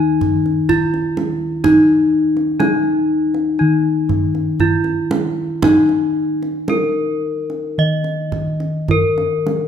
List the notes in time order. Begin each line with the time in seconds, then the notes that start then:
Already playing: D#3 D#4
0.21 kendang low
0.46 kendang slap
0.69 E4, kendang low
0.94 kendang slap
1.17 kendang high
1.64 D#4, kendang low
2.37 kendang slap
2.60 D#4 E4, kendang high
3.34 kendang slap
3.59 D#3 D#4
4.09 kendang low
4.35 kendang slap
4.60 E4, kendang low
4.84 kendang slap
5.11 kendang high
5.62 D#4, kendang high, kendang low
5.89 kendang slap
6.43 kendang slap
6.68 E4 A#4, kendang high
7.50 kendang slap
7.78 D#3 D#5
8.04 kendang slap
8.32 kendang low
8.60 kendang slap
8.88 E4 A#4, kendang low
9.18 kendang slap
9.46 kendang high